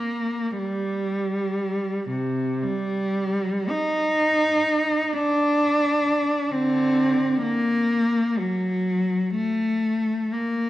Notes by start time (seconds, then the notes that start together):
Already playing: A#3
0.59 G3
2.10 C3
2.63 G3
3.70 D#4
5.13 D4
6.52 D3 C4
7.43 A#3
8.39 F#3
9.35 A3
10.33 A#3